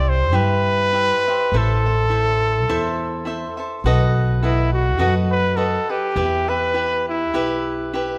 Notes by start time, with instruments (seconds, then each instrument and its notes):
Already playing: upright bass C2, cavaquinho E4 G4 C5 E5, trumpet D5
0.09 trumpet C5
0.32 upright bass G2, cavaquinho E4 G4 E5, trumpet B4
0.93 cavaquinho E4 G4 C5 E5
1.28 cavaquinho G4 C5 E5
1.52 upright bass A1, cavaquinho E4 A4 C5 E5
1.57 trumpet A4
1.86 cavaquinho A4 C5 E5
2.10 cavaquinho E4 A4 C5 E5
2.69 upright bass E2, cavaquinho E4 A4 C5 E5
3.25 cavaquinho E4 A4 C5 E5
3.57 cavaquinho A4 C5 E5
3.84 upright bass B1, cavaquinho F#4 A4 B4 D#5
4.43 trumpet E4, cavaquinho F#4 A4 B4 D#5
4.73 trumpet F#4
4.99 upright bass F#2, cavaquinho F#4 A4 B4 D#5, trumpet F#4
5.31 trumpet B4
5.57 cavaquinho F#4 A4 B4 D#5, trumpet A4
5.89 trumpet G4, cavaquinho A4 B4 D#5
6.16 upright bass E2, cavaquinho E4 G4 B4 E5
6.48 cavaquinho G4 B4 E5, trumpet B4
6.74 cavaquinho E4 G4 B4 E5
7.09 trumpet E4
7.33 upright bass B1, cavaquinho E4 G4 B4 E5
7.93 cavaquinho E4 G4 B4 E5